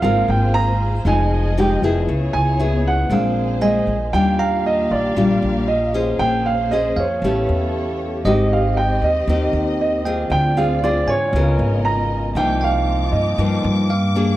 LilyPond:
<<
  \new Staff \with { instrumentName = "Tine electric piano" } { \time 4/4 \key bes \dorian \tempo 4 = 117 f''8 r2. r8 | r2. aes''4~ | \key ees \major aes''8 bes''2~ bes''8 r4 | r4. f''4 r4. |
ees''2~ ees''8 r4 g''8~ | g''8 r4 aes''4 r4. | r8 g''2~ g''8 f''4 | }
  \new Staff \with { instrumentName = "Grand piano" } { \time 4/4 \key bes \dorian f''8 g''8 bes''4 aes''4 g''8. r16 | r8 aes''4 ges''8 f''4 ees''4 | \key ees \major g''8 f''8 ees''8 d''4. ees''4 | g''8 f''8 ees''8 des''2 r8 |
ees''8 f''8 g''8 ees''4. ees''4 | g''8 f''8 d''8 des''4. bes''4 | g''8 f''4 ees''2 r8 | }
  \new Staff \with { instrumentName = "String section" } { \time 4/4 \key bes \dorian << { <bes aes' c''>2 <aes aes' ees''>2 | <ces' aes' des''>2 <bes aes' c''>2 | \key ees \major <bes g' f''>1 | <bes aes' c''>2 <b a' cis''>2 |
<c' ees''>1 | <c' d''>2 <ces' bes' ees''>2 | <bes f' d'''>1 | } \\ { f'1 | fes'2 c'2 | f'1 | des'2 g'2~ |
g'1 | f'1 | ees'1 | } >> }
  \new Staff \with { instrumentName = "Nylon-string guitar" } { \time 4/4 \key bes \dorian << { <c' f' bes'>4. r8 <aes ees'>4 <aes ees' g'>8 <ces' fes' aes'>8~ | <ces' fes' aes'>4 <ces' fes' aes'>4 <aes c' d'>4 <aes c'>8 r8 | \key ees \major <g d' f'>2 <g d' f'>4 r8 <des' aes' c''>8~ | <des' aes' c''>4 <des' aes' c''>8 r8 <cis' g' b'>2 |
<c' ees' g'>2 <c' ees' g'>4. <c' f' aes'>8~ | <c' f' aes'>8 <c' f' aes'>8 <c' f' aes'>8 r8 <ces' f' bes'>2 | <f bes ees'>2 <f bes ees'>4 r8 <bes d' aes'>8 | } \\ { aes2 f2 | des2 bes,2 | ees2 bes,2 | bes2 a2 |
aes2 ees2 | d2 des2 | c2 g,2 | } >> }
  \new Staff \with { instrumentName = "Upright bass" } { \clef bass \time 4/4 \key bes \dorian aes,,8 aes,,4. f,,4. f,,8 | des,8 des,4. bes,,4. bes,,8 | \key ees \major ees,4. bes,,8 bes,,8 bes,,4. | bes,,4. f,8 a,,8 e,4. |
aes,,4. ees,8 ees,8 ees,4. | d,4. aes,8 des,8 aes,,4. | c,4. g,8 g,8 g,4. | }
>>